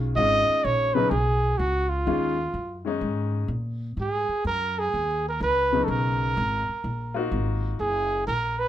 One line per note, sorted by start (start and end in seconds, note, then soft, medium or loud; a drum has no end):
0.00 0.14 B1 medium
0.00 0.13 D#3 medium
0.00 0.13 G#3 medium
0.00 0.13 C#4 medium
0.00 0.14 F4 medium
0.15 0.46 G#1 medium
0.15 0.89 D#3 medium
0.15 0.89 G#3 medium
0.15 0.90 C#4 medium
0.15 0.90 F4 medium
0.15 0.66 D#5 loud
0.49 muted upright bass stroke soft
0.64 1.10 A#1 medium
0.64 0.95 C#5 medium
0.94 1.09 C#3 medium
0.94 1.10 F#3 medium
0.94 1.10 B3 medium
0.94 1.10 D#4 medium
0.94 1.11 B4 medium
1.10 1.57 B1 medium
1.10 1.59 G#4 medium
1.58 2.05 C#2 medium
1.58 1.90 F#4 medium
1.89 2.85 F4 medium
2.06 2.53 D#2 medium
2.06 2.35 D#3 medium
2.06 2.35 G#3 medium
2.06 2.36 C#4 medium
2.06 2.36 F4 medium
2.54 3.00 F#2 medium
2.85 3.46 D#3 medium
2.85 3.46 G#3 medium
2.85 3.46 C#4 medium
2.85 3.47 D#4 medium
3.01 3.48 G#2 medium
3.48 3.95 A#2 medium
3.97 4.27 G#2 medium
3.97 4.43 G#4 medium
4.29 muted upright bass stroke soft
4.45 4.91 F#2 medium
4.45 4.80 A#4 medium
4.79 5.25 G#4 medium
4.94 5.39 D#2 medium
5.29 5.41 A#4 medium
5.40 5.87 C#2 medium
5.40 5.86 B4 medium
5.72 6.33 C#3 medium
5.72 6.33 F#3 medium
5.72 6.33 B3 medium
5.72 6.33 D#4 medium
5.84 6.34 B1 medium
5.84 5.91 A4 medium
5.89 7.32 A#4 loud
6.37 6.66 G#1 medium
6.68 muted upright bass stroke soft
6.84 7.30 A#1 medium
7.14 7.75 A#3 medium
7.14 7.76 D#4 medium
7.14 7.75 F4 medium
7.14 7.76 F#4 medium
7.31 7.78 G#1 medium
7.79 8.25 F#1 medium
7.79 8.24 G#4 medium
8.27 8.68 A#1 medium
8.27 8.61 A#4 medium
8.59 8.68 B4 loud